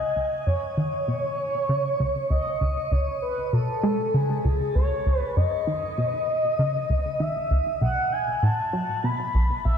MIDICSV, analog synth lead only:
0, 0, Header, 1, 2, 480
1, 0, Start_track
1, 0, Key_signature, 4, "minor"
1, 0, Tempo, 612245
1, 365, Time_signature, 4, 2, 24, 8
1, 7667, End_track
2, 0, Start_track
2, 0, Title_t, "Analog synth lead"
2, 0, Program_c, 0, 81
2, 0, Note_on_c, 0, 75, 84
2, 362, Note_off_c, 0, 75, 0
2, 367, Note_on_c, 0, 73, 108
2, 1775, Note_off_c, 0, 73, 0
2, 1805, Note_on_c, 0, 75, 90
2, 2287, Note_on_c, 0, 73, 93
2, 2299, Note_off_c, 0, 75, 0
2, 2522, Note_off_c, 0, 73, 0
2, 2526, Note_on_c, 0, 71, 83
2, 2765, Note_on_c, 0, 69, 93
2, 2777, Note_off_c, 0, 71, 0
2, 3248, Note_on_c, 0, 68, 96
2, 3259, Note_off_c, 0, 69, 0
2, 3721, Note_off_c, 0, 68, 0
2, 3726, Note_on_c, 0, 73, 97
2, 4071, Note_off_c, 0, 73, 0
2, 4071, Note_on_c, 0, 71, 97
2, 4206, Note_on_c, 0, 75, 109
2, 4218, Note_off_c, 0, 71, 0
2, 5645, Note_on_c, 0, 76, 92
2, 5657, Note_off_c, 0, 75, 0
2, 6121, Note_off_c, 0, 76, 0
2, 6125, Note_on_c, 0, 78, 106
2, 6368, Note_on_c, 0, 80, 94
2, 6380, Note_off_c, 0, 78, 0
2, 6607, Note_on_c, 0, 81, 109
2, 6619, Note_off_c, 0, 80, 0
2, 7087, Note_on_c, 0, 83, 119
2, 7099, Note_off_c, 0, 81, 0
2, 7561, Note_off_c, 0, 83, 0
2, 7566, Note_on_c, 0, 76, 98
2, 7667, Note_off_c, 0, 76, 0
2, 7667, End_track
0, 0, End_of_file